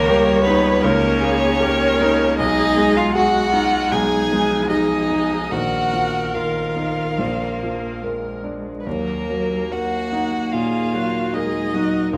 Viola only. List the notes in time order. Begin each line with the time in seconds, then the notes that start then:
Already playing: C#5
0.82 A#4
1.21 G#4
1.59 A#4
2.37 G#4
3.14 F#4
3.51 F4
3.91 D#4
4.71 G#4
5.53 A#4
10.54 G#4
10.93 F#4
11.34 G#4
11.74 F#4
12.13 G4